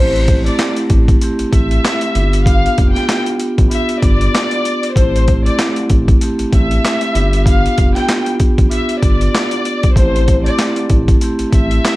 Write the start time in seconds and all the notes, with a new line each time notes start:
Already playing: A1 A3 C4 E4 G4 C5
0.16 closed hi-hat
0.28 kick, closed hi-hat
0.44 A3 C4 E4 G4 D5, closed hi-hat
0.59 snare, clap, closed hi-hat
0.76 closed hi-hat
0.90 A1, kick, closed hi-hat
1.08 kick, closed hi-hat
1.21 A3 C4 E4 G4, closed hi-hat
1.39 A1, closed hi-hat
1.53 A1 E5, kick, closed hi-hat
1.71 closed hi-hat
1.85 snare, clap, closed hi-hat
2.01 closed hi-hat
2.14 G1 B3 D4 F4 G4, closed hi-hat
2.33 closed hi-hat
2.45 B3 D4 F4 G4 F5, kick, closed hi-hat
2.66 closed hi-hat
2.78 F1, kick, closed hi-hat
2.92 B3 D4 F4 G4 G5, snare
2.96 closed hi-hat
3.09 snare, clap, closed hi-hat
3.26 closed hi-hat
3.40 closed hi-hat
3.58 A1, kick, closed hi-hat
3.69 B3 D4 F4 G4, closed hi-hat
3.73 E5
3.89 closed hi-hat
4.02 G1 D5, kick, closed hi-hat
4.21 closed hi-hat
4.35 snare, clap, closed hi-hat
4.51 closed hi-hat
4.65 closed hi-hat
4.83 closed hi-hat
4.94 A1 A3 C4 E4 C5, kick, closed hi-hat
4.98 G4
5.16 closed hi-hat
5.28 kick, closed hi-hat
5.44 A3 C4 E4 G4 D5, closed hi-hat
5.59 snare, clap, closed hi-hat
5.76 closed hi-hat
5.90 A1, kick, closed hi-hat
6.08 kick, closed hi-hat
6.21 A3 C4 E4 G4, closed hi-hat
6.39 A1, closed hi-hat
6.53 A1 E5, kick, closed hi-hat
6.71 closed hi-hat
6.85 snare, clap, closed hi-hat
7.01 closed hi-hat
7.14 G1 B3 D4 F4 G4, closed hi-hat
7.33 closed hi-hat
7.46 B3 D4 F4 G4 F5, kick, closed hi-hat
7.66 closed hi-hat
7.78 F1, kick, closed hi-hat
7.93 B3 D4 F4 G4 G5, snare, closed hi-hat
8.08 snare, clap, closed hi-hat
8.26 closed hi-hat
8.40 kick, closed hi-hat
8.58 A1, kick, closed hi-hat
8.69 B3 D4 F4 G4 E5, closed hi-hat
8.89 closed hi-hat
9.01 G1 D5, kick, closed hi-hat
9.21 closed hi-hat
9.35 snare, clap, closed hi-hat
9.51 closed hi-hat
9.65 closed hi-hat
9.83 kick, closed hi-hat
9.93 A1 A3 C4 E4 C5, kick, closed hi-hat
9.98 G4
10.16 closed hi-hat
10.28 kick, closed hi-hat
10.44 A3 C4 E4 G4 D5, closed hi-hat
10.59 snare, clap, closed hi-hat
10.76 closed hi-hat
10.90 A1, kick, closed hi-hat
11.08 kick, closed hi-hat
11.21 A3 C4 E4 G4, closed hi-hat
11.39 A1, closed hi-hat
11.53 A1 E5, kick, closed hi-hat
11.71 closed hi-hat
11.85 snare, clap, closed hi-hat